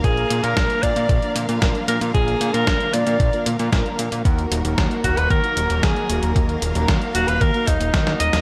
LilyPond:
<<
  \new Staff \with { instrumentName = "Alto saxophone" } { \time 4/4 \key ees \minor \tempo 4 = 114 aes'8. bes'8. d''4 r4 bes'8 | aes'8. bes'8. d''4 r4. | r4. ges'16 ces''16 bes'4 aes'8. r16 | r4. ges'16 ces''16 bes'8 ees'4 ees''8 | }
  \new Staff \with { instrumentName = "Analog polysynth" } { \time 4/4 \key ees \minor <bes d' f' bes'>8. <bes d' f' bes'>8. <bes d' f' bes'>8. <bes d' f' bes'>16 r8 <bes d' f' bes'>4 | <bes d' f' bes'>8. <bes d' f' bes'>8. <bes d' f' bes'>8. <bes d' f' bes'>16 r8 <bes d' f' bes'>4 | <bes ees' ges' bes'>8. <bes ees' ges' bes'>8. <bes ees' ges' bes'>8. <bes ees' ges' bes'>16 r8 <bes ees' ges' bes'>4 | <bes ees' ges' bes'>8. <bes ees' ges' bes'>8. <bes ees' ges' bes'>8. <bes ees' ges' bes'>16 r8 <bes ees' ges' bes'>4 | }
  \new Staff \with { instrumentName = "String section" } { \time 4/4 \key ees \minor << { f''1~ | f''1 | ges'1 | f''1 | } \\ { <d f bes bes'>1~ | <d f bes bes'>1 | <ees ges bes bes'>1~ | <ees ges bes bes'>1 | } >> }
  \new Staff \with { instrumentName = "Analog synth bass" } { \clef bass \time 4/4 \key ees \minor bes,,8 bes,16 bes,16 bes,,16 r16 bes,16 bes,16 bes,,16 r16 bes,16 bes,16 bes,,16 r16 bes,16 bes,16 | bes,,8 bes,16 bes,16 bes,,16 r16 bes,16 bes,16 bes,,16 r16 bes,16 bes,16 bes,,16 r16 bes,16 bes,16 | ees,8 ees,,16 ees,,16 ees,16 r16 ees,,16 ees,,16 ees,16 r16 ees,,16 ees,,16 ees,16 r16 ees,,16 ees,,16 | ees,8 ees,,16 ees,,16 ees,16 r16 ees,,16 ees,,16 ees,16 r16 ees,,16 ees,,16 ees,8 ees,,16 ees,,16 | }
  \new DrumStaff \with { instrumentName = "Drums" } \drummode { \time 4/4 <hh bd>16 hh16 hh16 hh16 <hh bd sn>16 hh16 <hh bd>16 hh16 <hh bd>16 hh16 hh16 hh16 <hh bd sn>16 hh16 hh16 hh16 | <hh bd>16 hh16 hh16 hh16 <hh bd sn>16 hh16 hh16 hh16 <hh bd>16 hh16 hh16 hh16 <hh bd sn>16 hh16 hh16 hh16 | <hh bd>16 hh16 hh16 hh16 <hh bd sn>16 hh16 <hh bd>16 hh16 <hh bd>16 hh16 hh16 hh16 <hh bd sn>16 hh16 hh16 hh16 | <hh bd>16 hh16 hh16 hh16 <hh bd sn>16 hh16 hh16 hh16 <hh bd>16 hh16 <hh bd>16 hh16 <hh bd sn>16 <hh sn>16 hh16 <hh sn>16 | }
>>